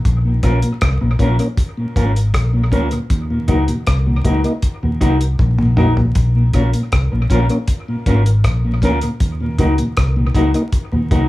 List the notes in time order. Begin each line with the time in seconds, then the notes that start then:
0.05 A#1, kick, closed hi-hat
0.25 A#2
0.43 A#1 F3 A#3 C#4 F4 A#4, kick, cross-stick, closed hi-hat
0.62 A#2, closed hi-hat
0.81 C2, kick, cross-stick, closed hi-hat
1.01 A#1 A#2, muted clean electric guitar stroke
1.19 A#1 F3 A#3 C#4 F4 A#4, kick, closed hi-hat
1.39 A#3 C#4, closed hi-hat
1.57 kick, closed hi-hat
1.77 A#2
1.96 G#1 F3 A#3 C#4 F4 A#4, kick, closed hi-hat
2.16 closed hi-hat
2.34 A#1, kick, cross-stick, closed hi-hat
2.53 A#2
2.72 D2 F3 A#3 C#4 F4 A#4, kick, closed hi-hat
2.91 A#2, muted clean electric guitar stroke, closed hi-hat
3.10 D#2, kick, closed hi-hat
3.30 D#2 A#2
3.48 C#2 F#3 A#3 D#4 F#4 A#4, kick, closed hi-hat
3.68 D#2 A#2, closed hi-hat
3.87 C2, kick, cross-stick, closed hi-hat
4.06 D#2 A#2
4.24 C#2 F#3 A#3 D#4 F#4 A#4, kick, closed hi-hat
4.44 A#3 D#4, closed hi-hat
4.62 kick, closed hi-hat
4.83 D#2 A#2, muted clean electric guitar stroke
5.01 C2 F#3 A#3 D#4 F#4 A#4, kick, closed hi-hat
5.21 closed hi-hat
5.39 A#1, kick, high tom
5.58 D#2 A#2, mid tom
5.77 F#3 A#3 D#4 F#4 A#4, mid tom
5.97 D#2 A#2, floor tom
6.15 A#1, kick, closed hi-hat
6.36 A#2
6.53 A#1 F3 A#3 C#4 F4 A#4, kick, cross-stick, closed hi-hat
6.74 A#2, closed hi-hat
6.92 C2, kick, cross-stick, closed hi-hat
7.12 A#1 A#2, muted clean electric guitar stroke
7.30 A#1 F3 A#3 C#4 F4 A#4, kick, closed hi-hat
7.49 A#3 C#4, closed hi-hat
7.68 kick, closed hi-hat
7.88 A#2
8.06 G#1 F3 A#3 C#4 F4 A#4, kick, closed hi-hat
8.26 closed hi-hat
8.44 A#1, kick, cross-stick, closed hi-hat
8.65 A#2
8.82 D2 F3 A#3 C#4 F4 A#4, kick, closed hi-hat
9.01 A#2, muted clean electric guitar stroke, closed hi-hat
9.20 D#2, kick, closed hi-hat
9.41 D#2 A#2
9.58 C#2 F#3 A#3 D#4 F#4 A#4, kick, closed hi-hat
9.78 D#2 A#2, closed hi-hat
9.97 C2, kick, cross-stick, closed hi-hat
10.16 D#2 A#2
10.35 C#2 F#3 A#3 D#4 F#4 A#4, kick, closed hi-hat
10.54 A#3 D#4, closed hi-hat
10.73 kick, closed hi-hat
10.92 D#2 A#2, muted clean electric guitar stroke
11.11 C2 F#3 A#3 D#4 F#4 A#4, kick, closed hi-hat